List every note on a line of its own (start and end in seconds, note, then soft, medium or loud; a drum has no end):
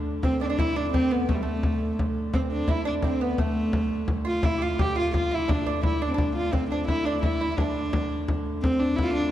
0.00 0.22 D3 medium
0.00 0.22 A3 medium
0.06 frame drum soft
0.22 4.43 D3 medium
0.22 4.44 A3 medium
0.22 0.39 C4 medium
0.22 0.41 C4 medium
0.22 frame drum medium
0.41 0.49 D4 medium
0.41 0.47 D4 medium
0.41 frame drum soft
0.46 0.52 C4 medium
0.46 0.58 D4 medium
0.50 0.60 D4 medium
0.59 0.78 E4 medium
0.59 0.76 E4 medium
0.59 frame drum medium
0.76 0.94 D4 medium
0.76 0.92 D4 medium
0.93 1.13 C4 medium
0.93 1.11 C4 medium
0.93 frame drum medium
1.11 1.28 B3 medium
1.28 1.37 A3 medium
1.28 1.41 A3 medium
1.28 frame drum medium
1.35 1.44 G3 medium
1.42 1.98 A3 medium
1.42 1.94 A3 medium
1.46 frame drum soft
1.63 frame drum medium
1.99 frame drum medium
2.34 2.42 C4 medium
2.34 2.70 C4 medium
2.34 frame drum medium
2.52 2.73 D4 medium
2.52 frame drum soft
2.68 2.85 E4 medium
2.68 frame drum medium
2.85 3.03 D4 medium
2.85 2.94 D4 medium
3.02 3.21 C4 medium
3.02 3.23 C4 medium
3.02 frame drum medium
3.21 3.38 B3 medium
3.21 3.33 B3 medium
3.33 3.40 B3 medium
3.38 4.08 A3 medium
3.38 4.05 A3 medium
3.38 frame drum medium
3.73 frame drum medium
3.91 frame drum soft
4.08 frame drum medium
4.25 4.41 F4 medium
4.25 4.46 F4 medium
4.43 8.64 D3 medium
4.43 8.65 A3 medium
4.43 4.57 E4 medium
4.43 4.64 E4 medium
4.43 frame drum medium
4.58 4.61 G4 medium
4.58 frame drum soft
4.62 4.79 F4 medium
4.62 4.83 F4 medium
4.79 4.97 G4 medium
4.79 4.97 G4 loud
4.79 frame drum medium
4.96 5.12 F4 medium
4.96 5.13 F4 medium
5.13 5.31 F4 medium
5.13 5.36 F4 medium
5.13 frame drum medium
5.31 5.48 E4 medium
5.31 5.52 E4 medium
5.48 5.65 D4 medium
5.48 5.84 D4 medium
5.48 frame drum loud
5.66 5.83 D4 medium
5.66 frame drum soft
5.83 6.01 E4 medium
5.83 6.03 E4 medium
5.83 frame drum medium
6.02 6.13 D4 medium
6.02 6.11 D4 medium
6.09 6.17 C4 medium
6.14 6.54 D4 medium
6.14 6.35 D4 medium
6.18 frame drum medium
6.36 6.55 F4 medium
6.53 6.71 C4 medium
6.53 6.70 C4 medium
6.53 frame drum medium
6.70 6.87 D4 medium
6.70 6.88 D4 medium
6.70 frame drum soft
6.88 7.07 E4 medium
6.88 7.06 E4 medium
6.88 frame drum medium
7.05 7.22 D4 medium
7.05 7.23 D4 medium
7.23 7.59 E4 medium
7.23 7.40 E4 medium
7.23 frame drum medium
7.41 7.51 E4 medium
7.52 7.59 E4 soft
7.57 8.28 D4 medium
7.57 8.25 D4 medium
7.57 frame drum medium
7.93 frame drum medium
8.11 frame drum soft
8.28 frame drum medium
8.46 frame drum soft
8.62 9.31 D3 medium
8.62 9.31 A3 medium
8.62 8.81 C4 loud
8.62 frame drum medium
8.79 8.98 D4 medium
8.79 frame drum soft
8.96 9.04 E4 medium
8.96 frame drum medium
9.03 9.13 E4 loud
9.03 9.07 F4 medium
9.14 9.31 D4 medium